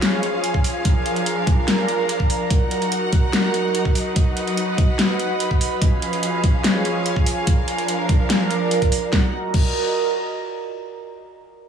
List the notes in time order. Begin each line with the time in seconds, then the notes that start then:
Already playing: F3 C#4 F4 G#4 C#5 F5 G#5
0.02 snare, closed hi-hat
0.23 closed hi-hat
0.44 closed hi-hat
0.54 kick
0.64 open hi-hat
0.85 D4 A#4, kick, closed hi-hat
1.06 A#5, closed hi-hat
1.16 A#4, closed hi-hat
1.26 closed hi-hat
1.47 kick, closed hi-hat
1.60 D5
1.68 snare, closed hi-hat
1.88 closed hi-hat
2.09 closed hi-hat
2.20 kick
2.30 open hi-hat
2.50 F#3 D#4 F#4 A#4 F#5, kick, closed hi-hat
2.71 closed hi-hat
2.82 closed hi-hat
2.92 closed hi-hat
3.13 kick, closed hi-hat
3.25 D#5
3.33 snare, closed hi-hat
3.54 closed hi-hat
3.75 closed hi-hat
3.85 kick
3.95 open hi-hat
4.16 B4 F#5, kick, closed hi-hat
4.37 closed hi-hat
4.41 B4
4.47 closed hi-hat
4.57 closed hi-hat
4.78 kick, closed hi-hat
4.83 B5
4.99 snare, closed hi-hat
5.19 closed hi-hat
5.40 closed hi-hat
5.51 kick
5.61 open hi-hat
5.82 F3 C#4 F4 G#4 F5, kick, closed hi-hat
6.02 closed hi-hat
6.10 G#4, closed hi-hat
6.23 closed hi-hat
6.43 C#5, kick, closed hi-hat
6.56 G#5
6.64 snare, closed hi-hat
6.85 closed hi-hat
7.06 closed hi-hat
7.16 kick
7.26 open hi-hat
7.47 F3 D4 A#4, kick, closed hi-hat
7.68 closed hi-hat
7.78 A#4, closed hi-hat
7.88 closed hi-hat
8.04 D5
8.09 kick, closed hi-hat
8.22 A#5
8.30 snare, closed hi-hat
8.51 closed hi-hat
8.71 closed hi-hat
8.82 kick, closed hi-hat
8.92 open hi-hat
9.13 F#3 D#4 F#4 A#4 F#5, kick, snare
9.19 A#4
9.26 D#5
9.31 A#5
9.54 kick, crash